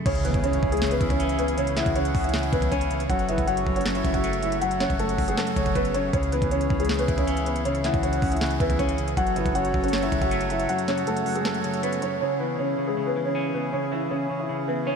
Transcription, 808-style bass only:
0.06 0.33 C#2 loud
0.34 0.62 C#2 loud
0.63 0.99 C#2 loud
1.01 1.83 C#2 loud
1.86 2.13 C#2 loud
2.15 2.51 C#2 loud
2.53 3.07 C#2 loud
3.10 3.37 F#1 loud
3.38 3.65 F#1 loud
3.67 4.03 F#1 loud
4.05 4.87 F#1 loud
4.90 5.17 F#1 loud
5.18 5.37 F#1 loud
5.56 6.11 F#1 loud
6.13 6.41 C#2 loud
6.42 6.69 C#2 loud
6.70 7.07 C#2 loud
7.08 7.90 C#2 loud
7.94 8.21 C#2 loud
8.22 8.59 C#2 loud
8.60 9.15 C#2 loud
9.17 9.45 F#1 loud
9.46 9.73 F#1 loud
9.74 10.11 F#1 loud
10.12 10.21 F#1 loud
10.22 10.67 F#1 loud

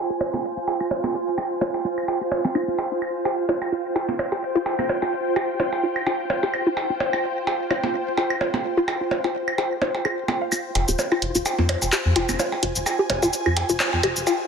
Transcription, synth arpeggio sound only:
0.10 0.14 G4 medium
0.33 0.36 F4 medium
0.57 0.61 F4 medium
0.80 0.87 F4 medium
1.14 1.19 G4 medium
1.38 1.41 F4 medium
1.61 1.66 F4 medium
1.85 1.92 F4 medium
2.21 2.25 G4 medium
2.44 2.49 C4 medium
2.55 2.58 D#4 medium
2.68 2.74 F4 medium
2.92 2.98 D#4 medium
3.26 3.30 G4 medium
3.49 3.52 F4 medium
3.72 3.77 F4 medium
3.96 4.03 F4 medium
4.32 4.36 G4 medium
4.55 4.58 F4 loud
4.79 4.83 F4 medium
5.02 5.09 F4 medium
5.36 5.41 G4 medium
5.60 5.63 F4 loud
5.83 5.88 F4 medium
6.07 6.14 F4 medium
6.43 6.47 G4 medium
6.67 6.69 F4 medium
6.90 6.94 F4 medium
7.13 7.20 F4 medium
7.47 7.52 G4 medium
7.71 7.74 F4 loud
7.94 7.99 F4 medium
8.18 8.25 F4 medium
8.54 8.58 G4 medium
8.77 8.80 F4 loud
9.01 9.05 F4 medium
9.24 9.30 F4 medium
9.58 9.63 G4 medium
9.82 9.85 D#4 medium
10.05 10.10 G#4 medium
10.29 10.34 F4 medium
10.42 10.46 F5 medium
10.52 10.60 F4 medium
10.89 10.93 G4 medium
11.12 11.14 F4 loud
11.35 11.39 F4 medium
11.59 11.65 F4 medium
11.93 11.98 G4 medium
12.16 12.19 F4 loud
12.39 12.44 F4 medium
12.63 12.70 F4 medium
12.99 13.03 G4 medium
13.23 13.25 F4 loud
13.46 13.50 F4 medium
13.69 13.76 F4 medium
14.03 14.09 G4 medium
14.27 14.30 F4 medium

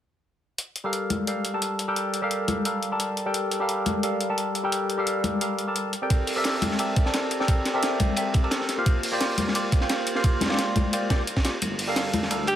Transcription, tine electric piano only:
0.84 1.25 G3 medium
0.84 1.25 G4 medium
0.84 1.26 A4 medium
0.84 1.26 A#4 medium
0.84 1.26 F5 loud
1.27 1.51 G3 medium
1.27 1.52 G4 medium
1.27 1.52 A4 medium
1.27 1.52 A#4 medium
1.27 1.52 F5 medium
1.53 1.86 G3 medium
1.53 1.86 G4 medium
1.53 1.86 A4 medium
1.53 1.86 A#4 medium
1.53 1.86 A5 medium
1.88 2.20 G3 medium
1.88 2.20 G4 medium
1.88 2.21 A4 medium
1.88 2.21 A#4 medium
1.88 2.21 G5 medium
2.22 2.63 G3 medium
2.22 2.63 G4 medium
2.22 2.63 A4 medium
2.22 2.64 A#4 medium
2.22 2.64 F5 loud
2.65 2.89 G3 medium
2.65 2.90 G4 medium
2.65 2.90 A4 medium
2.65 2.90 A#4 medium
2.65 2.90 F5 medium
2.91 3.24 G3 medium
2.91 3.24 G4 medium
2.91 3.24 A4 medium
2.91 3.24 A#4 medium
2.91 3.24 A5 medium
3.26 3.58 G3 medium
3.26 3.58 G4 medium
3.26 3.59 A4 medium
3.26 3.59 A#4 medium
3.26 3.59 G5 medium
3.60 4.01 G3 medium
3.60 4.01 G4 medium
3.60 4.01 A4 medium
3.60 4.02 A#4 medium
3.60 4.02 F5 loud
4.03 4.27 G3 medium
4.03 4.27 G4 medium
4.03 4.28 A4 medium
4.03 4.28 A#4 medium
4.03 4.28 F5 medium
4.29 4.62 G3 medium
4.29 4.62 G4 medium
4.29 4.62 A4 medium
4.29 4.62 A#4 medium
4.29 4.62 A5 medium
4.64 4.96 G3 medium
4.64 4.96 G4 medium
4.64 4.96 A4 medium
4.64 4.97 A#4 medium
4.64 4.97 G5 medium
4.98 5.39 G3 medium
4.98 5.39 G4 medium
4.98 5.39 A4 medium
4.98 5.40 A#4 medium
4.98 5.40 F5 loud
5.41 5.65 G3 medium
5.41 5.65 G4 medium
5.41 5.65 A4 medium
5.41 5.66 A#4 medium
5.41 5.66 F5 medium
5.67 5.92 G3 medium
5.67 5.92 G4 medium
5.67 5.92 A4 medium
5.67 5.92 A#4 medium
5.67 5.92 A5 medium
6.02 6.34 C4 medium
6.02 6.34 G4 medium
6.02 6.34 A4 medium
6.02 6.35 A#4 medium
6.02 6.35 D5 medium
6.02 6.35 G5 medium
6.36 6.77 C4 medium
6.36 6.77 G4 medium
6.36 6.77 A4 medium
6.36 6.77 A#4 medium
6.36 6.78 D5 medium
6.36 6.78 E5 loud
6.79 7.03 C4 medium
6.79 7.03 G4 medium
6.79 7.03 A4 medium
6.79 7.04 A#4 medium
6.79 7.04 D5 medium
6.79 7.04 E5 medium
7.05 7.38 C4 medium
7.05 7.38 G4 medium
7.05 7.38 A4 medium
7.05 7.38 A#4 medium
7.05 7.38 D5 medium
7.05 7.38 A5 medium
7.40 7.72 C4 medium
7.40 7.72 G4 medium
7.40 7.72 A4 medium
7.40 7.72 A#4 medium
7.40 7.73 D5 medium
7.40 7.73 G5 medium
7.74 8.15 C4 medium
7.74 8.15 G4 medium
7.74 8.15 A4 medium
7.74 8.15 A#4 medium
7.74 8.16 D5 medium
7.74 8.16 E5 loud
8.17 8.41 C4 medium
8.17 8.41 G4 medium
8.17 8.41 A4 medium
8.17 8.42 A#4 medium
8.17 8.42 D5 medium
8.17 8.42 E5 medium
8.43 8.76 C4 medium
8.43 8.76 G4 medium
8.43 8.76 A4 medium
8.43 8.76 A#4 medium
8.43 8.76 D5 medium
8.43 8.76 A5 medium
8.78 9.10 A#3 medium
8.78 9.10 F4 medium
8.78 9.10 G4 medium
8.78 9.10 C5 medium
8.78 9.11 F5 loud
9.12 9.53 A#3 medium
9.12 9.53 F4 medium
9.12 9.53 G4 medium
9.12 9.53 C5 medium
9.12 9.54 D5 loud
9.55 9.79 A#3 medium
9.55 9.79 F4 medium
9.55 9.79 G4 medium
9.55 9.79 C5 medium
9.55 9.80 D5 medium
9.81 10.14 A#3 medium
9.81 10.14 F4 medium
9.81 10.14 G4 medium
9.81 10.14 C5 medium
9.81 10.14 G5 medium
10.16 10.48 A#3 medium
10.16 10.48 F4 medium
10.16 10.48 G4 medium
10.16 10.48 C5 medium
10.16 10.49 F5 loud
10.49 10.91 A#3 loud
10.49 10.91 F4 medium
10.49 10.91 G4 medium
10.49 10.91 C5 medium
10.49 10.92 D5 loud
10.93 11.08 A#3 medium
10.93 11.09 F4 medium
10.93 11.09 G4 medium
10.93 11.09 C5 medium
10.93 11.09 D5 medium
11.10 11.22 A#3 medium
11.10 11.22 F4 medium
11.10 11.22 G4 medium
11.10 11.22 C5 medium
11.10 11.22 D5 medium
11.44 11.56 A#3 medium
11.44 11.56 F4 medium
11.44 11.56 G4 medium
11.44 11.56 C5 medium
11.44 11.57 D5 medium
11.87 12.28 G3 medium
11.87 12.29 G4 medium
11.87 12.29 A4 medium
11.87 12.29 A#4 medium
11.87 12.29 F5 loud
12.30 12.55 G3 medium
12.30 12.55 G4 medium
12.30 12.55 A4 medium
12.30 12.55 A#4 medium
12.30 12.55 F5 medium

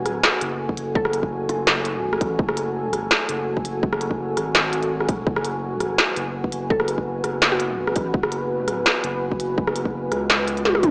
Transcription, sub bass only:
0.00 0.22 F#1 loud
0.41 1.48 F#1 medium
1.49 2.20 F#1 loud
2.21 2.38 A1 loud
2.39 3.10 F#1 loud
3.29 4.35 F#1 medium
4.37 5.07 G#1 medium
5.09 5.25 E1 loud
5.27 5.97 F#1 loud
6.16 7.23 F#1 medium
7.24 7.95 F#1 loud
7.96 8.13 A1 medium
8.14 8.84 F#1 loud
9.04 10.10 F#1 loud
10.12 10.82 C#2 loud
10.83 10.91 F#1 loud

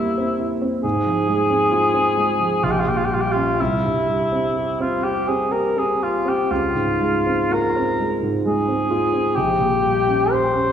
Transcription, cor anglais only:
0.00 0.40 E4 soft
0.83 2.65 G#4 medium
2.64 2.73 F4 soft
2.71 2.81 G4 soft
2.79 2.91 F4 soft
2.89 2.99 G4 soft
2.97 3.06 F4 soft
3.05 3.15 G4 soft
3.14 3.22 F4 soft
3.21 3.33 G4 soft
3.32 3.62 F4 medium
3.60 4.80 E4 soft
4.81 5.05 F4 soft
5.04 5.30 G4 soft
5.28 5.53 G#4 soft
5.52 5.80 A#4 soft
5.79 6.05 G#4 soft
6.03 6.30 F4 soft
6.29 6.53 G4 soft
6.51 7.54 F4 soft
7.53 8.18 A#4 medium
8.46 9.37 G#4 soft
9.35 10.33 G4 medium
10.32 10.72 C5 medium

